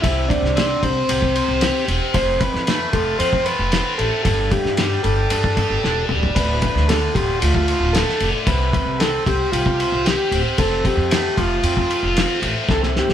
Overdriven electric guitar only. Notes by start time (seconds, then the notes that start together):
0.04 C3
0.56 C4
0.83 C5
1.09 G4
1.35 C5
1.63 G4
1.89 C4
2.15 F2
2.68 A3
2.95 F4
3.21 C4
3.47 F4
3.74 C4
3.99 A3
4.25 G2
4.78 G3
5.05 G4
5.32 D4
5.58 G4
5.84 D4
6.10 G3
6.36 D2
6.90 D3
7.15 F4
7.42 A3
7.70 F4
7.95 A3
8.22 D3
8.48 C3
9.00 C4
9.28 C5
9.54 G4
9.81 C5
10.06 G4
10.34 C4
10.59 F2
11.12 A3
11.37 F4
11.64 C4
11.91 F4
12.17 C4
12.43 A3
12.69 C3